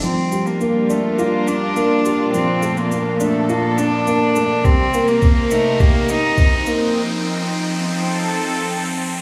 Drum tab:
SH |x-xxx-x-x-x-x-x-|x-xxx-x-x-x-x-x-|x-xxx-x-x-x-x-x-|----------------|
BD |----------------|----------------|o---o---o---o---|----------------|